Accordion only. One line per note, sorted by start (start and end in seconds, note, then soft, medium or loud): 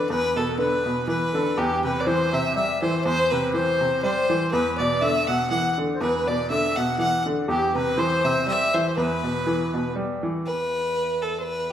0.10 0.34 B4 medium
0.36 0.57 A4 medium
0.59 1.06 B4 medium
1.07 1.35 B4 medium
1.33 1.55 A4 medium
1.56 1.84 G4 medium
1.83 2.04 B4 medium
2.05 2.33 C5 medium
2.32 2.53 E5 medium
2.54 2.82 E5 medium
2.82 3.03 C5 medium
3.04 3.32 C5 medium
3.31 3.54 B4 medium
3.54 4.00 C5 medium
4.02 4.53 C5 medium
4.52 4.80 B4 medium
4.78 5.02 D5 medium
5.01 5.26 E5 medium
5.28 5.49 F#5 medium
5.50 5.75 F#5 medium
5.95 6.00 C5 medium
6.00 6.28 B4 medium
6.26 6.48 D5 medium
6.49 6.77 E5 medium
6.75 6.96 F#5 medium
6.98 7.23 F#5 medium
7.48 7.73 G4 medium
7.75 7.96 B4 medium
7.97 8.43 C5 medium
8.46 8.74 E5 loud
8.73 8.87 C5 medium
8.89 8.96 C5 medium
8.96 9.91 B4 medium